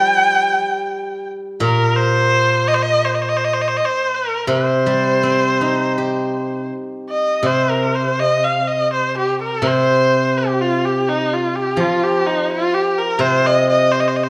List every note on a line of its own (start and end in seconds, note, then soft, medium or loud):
0.00 0.54 F3 medium
0.00 1.60 G3 medium
0.00 1.26 G5 medium
1.60 3.76 A#2 medium
1.60 1.97 A#4 medium
1.96 2.70 C5 loud
2.68 2.76 D#5 loud
2.74 2.84 C5 medium
2.82 3.07 D#5 loud
3.05 3.16 C5 medium
3.15 3.23 D#5 medium
3.22 3.31 C5 medium
3.29 3.38 D#5 medium
3.37 3.46 C5 medium
3.44 3.55 D#5 medium
3.54 3.63 C5 medium
3.61 3.70 D#5 medium
3.68 3.78 C5 medium
3.77 3.87 D#5 medium
3.85 4.16 C5 medium
4.14 4.50 A#4 medium
4.47 6.69 C3 medium
4.47 6.67 C5 medium
4.86 6.34 G3 soft
5.23 6.71 C4 soft
5.61 7.08 D#4 soft
5.98 7.45 G4 soft
7.10 7.48 D#5 medium
7.43 9.61 C3 medium
7.43 7.72 C5 medium
7.70 7.97 A#4 medium
7.95 8.21 C5 medium
8.20 8.46 D#5 medium
8.44 8.69 F5 medium
8.68 8.92 D#5 medium
8.93 9.15 C5 medium
9.18 9.39 G4 medium
9.42 9.69 A#4 medium
9.62 11.78 C3 medium
9.67 10.39 C5 medium
10.38 10.62 G4 medium
10.61 10.87 F4 medium
10.85 11.10 G4 medium
11.09 11.35 D#4 medium
11.33 11.58 F4 medium
11.56 11.82 G4 medium
11.77 13.91 F3 medium
11.77 12.05 F4 medium
12.04 12.28 G4 medium
12.27 12.53 D#4 medium
12.51 12.76 F4 medium
12.74 12.99 G4 medium
12.98 13.22 A#4 medium
13.19 14.29 C3 medium
13.19 13.48 C5 medium
13.46 13.69 D#5 medium
13.70 13.94 D#5 medium
13.92 14.02 C5 medium
14.00 14.09 D#5 medium
14.08 14.18 C5 medium
14.16 14.25 D#5 medium
14.24 14.29 C5 medium